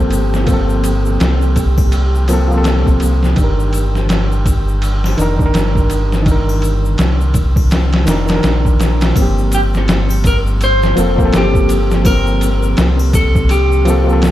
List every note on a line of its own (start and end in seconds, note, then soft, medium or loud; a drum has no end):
0.00 1.18 G1 medium
0.00 0.44 F3 medium
0.00 0.47 A#3 medium
0.00 0.50 C4 medium
0.00 9.18 G4 medium
0.00 0.53 A4 loud
0.11 ride medium
0.11 shaker medium
0.34 snare soft
0.34 shaker soft
0.44 2.24 F3 medium
0.44 2.25 A#3 medium
0.44 kick medium
0.44 ride medium
0.48 2.27 C4 medium
0.48 shaker soft
0.53 2.28 A4 medium
0.69 shaker soft
0.84 ride medium
0.84 shaker medium
1.06 shaker soft
1.20 3.35 C2 medium
1.20 snare loud
1.20 ride medium
1.20 shaker soft
1.42 shaker soft
1.56 kick medium
1.56 ride medium
1.56 shaker medium
1.78 kick loud
1.78 triangle medium
1.78 shaker soft
1.92 ride medium
1.92 shaker soft
2.15 shaker soft
2.28 2.46 F3 medium
2.28 2.46 A#3 medium
2.28 2.47 C4 medium
2.28 ride medium
2.28 triangle medium
2.28 shaker medium
2.33 2.48 A4 loud
2.48 3.33 F3 medium
2.48 3.35 A#3 medium
2.48 shaker soft
2.54 3.36 C4 medium
2.54 3.38 A4 medium
2.64 snare loud
2.64 ride medium
2.64 shaker soft
2.86 kick medium
2.86 shaker soft
3.00 ride medium
3.00 shaker medium
3.23 snare soft
3.23 shaker soft
3.35 5.15 G1 loud
3.35 5.14 D#3 medium
3.35 kick loud
3.35 ride medium
3.35 shaker soft
3.40 5.16 D4 medium
3.44 5.18 A#4 medium
3.60 shaker soft
3.73 ride medium
3.73 shaker medium
3.95 snare soft
3.95 shaker soft
4.09 snare loud
4.09 ride medium
4.09 shaker soft
4.32 shaker soft
4.46 kick medium
4.46 ride medium
4.46 shaker medium
4.68 shaker soft
4.82 ride medium
4.82 shaker soft
5.04 snare soft
5.04 triangle medium
5.17 5.51 F1 medium
5.17 5.34 D#3 medium
5.17 5.35 D4 medium
5.17 ride medium
5.17 shaker medium
5.22 5.37 A#4 loud
5.36 6.21 D#3 medium
5.36 kick medium
5.40 6.24 D4 medium
5.40 shaker soft
5.46 6.26 A#4 medium
5.54 6.96 G1 medium
5.54 snare loud
5.54 ride medium
5.54 shaker soft
5.75 kick medium
5.75 shaker soft
5.90 ride medium
5.90 shaker medium
6.12 snare soft
6.12 shaker soft
6.23 8.02 D#3 medium
6.23 kick loud
6.23 ride medium
6.27 8.04 D4 medium
6.27 shaker soft
6.32 8.07 A#4 medium
6.49 triangle medium
6.49 shaker soft
6.62 ride medium
6.62 shaker medium
6.85 shaker soft
6.98 8.07 C2 medium
6.98 snare loud
6.98 ride medium
6.98 shaker soft
7.21 shaker soft
7.34 kick medium
7.34 ride medium
7.34 shaker medium
7.56 kick loud
7.56 triangle medium
7.56 shaker soft
7.71 snare loud
7.71 ride medium
7.71 shaker soft
7.93 snare loud
7.93 ride medium
8.06 8.40 F1 medium
8.06 8.23 D#3 medium
8.06 8.24 D4 medium
8.06 snare loud
8.06 ride medium
8.06 triangle medium
8.06 shaker medium
8.10 8.26 A#4 loud
8.26 9.11 D#3 medium
8.26 snare loud
8.26 ride medium
8.26 shaker soft
8.31 9.13 D4 medium
8.36 9.16 A#4 medium
8.43 9.14 A#1 loud
8.43 snare loud
8.43 ride medium
8.43 shaker soft
8.65 kick medium
8.65 shaker soft
8.80 snare medium
8.80 ride medium
8.80 shaker medium
9.01 snare loud
9.01 ride medium
9.01 shaker soft
9.13 10.94 G1 loud
9.13 10.92 F3 medium
9.13 10.93 A#3 medium
9.13 kick loud
9.13 ride medium
9.13 triangle medium
9.13 shaker medium
9.19 10.95 C4 medium
9.19 10.96 G4 medium
9.38 shaker soft
9.52 9.60 G4 medium
9.52 ride medium
9.52 shaker medium
9.74 10.27 A4 medium
9.74 snare soft
9.74 shaker soft
9.88 snare loud
9.88 ride medium
9.88 shaker soft
10.10 triangle medium
10.10 shaker soft
10.24 10.37 A#4 medium
10.24 kick loud
10.24 ride medium
10.24 shaker medium
10.47 shaker soft
10.61 11.37 C5 loud
10.61 ride medium
10.61 shaker soft
10.82 snare medium
10.82 shaker soft
10.96 11.30 F1 medium
10.96 11.13 F3 medium
10.96 11.14 A#3 medium
10.96 11.14 C4 medium
10.96 ride medium
10.96 shaker medium
11.00 11.15 A4 loud
11.16 12.00 F3 medium
11.16 12.02 A#3 medium
11.16 kick medium
11.20 12.04 C4 medium
11.20 shaker soft
11.25 12.05 A4 medium
11.33 12.75 G1 medium
11.33 12.09 G4 medium
11.33 snare loud
11.33 ride medium
11.33 shaker medium
11.54 kick medium
11.54 shaker soft
11.69 ride medium
11.69 shaker medium
11.91 snare soft
11.91 shaker soft
12.04 13.82 F3 medium
12.04 13.84 A#3 medium
12.04 13.15 A#4 loud
12.04 kick loud
12.04 ride medium
12.04 triangle medium
12.04 shaker medium
12.10 13.85 C4 medium
12.10 13.87 G4 medium
12.27 shaker soft
12.41 ride medium
12.41 shaker medium
12.63 shaker soft
12.77 14.31 C2 medium
12.77 snare loud
12.77 ride medium
12.77 shaker medium
12.99 triangle medium
12.99 shaker soft
13.13 13.52 A4 medium
13.13 kick loud
13.13 ride medium
13.13 shaker loud
13.35 kick loud
13.35 shaker soft
13.49 14.19 G4 medium
13.49 ride medium
13.49 shaker medium
13.72 shaker soft
13.85 14.02 F3 loud
13.85 14.03 A#3 medium
13.85 14.04 C4 medium
13.85 ride medium
13.85 shaker medium
13.90 14.05 A4 loud
14.04 14.31 F3 medium
14.04 14.31 A#3 medium
14.09 14.31 C4 medium
14.09 14.31 A4 medium
14.09 shaker soft
14.22 snare loud
14.22 ride medium
14.22 shaker medium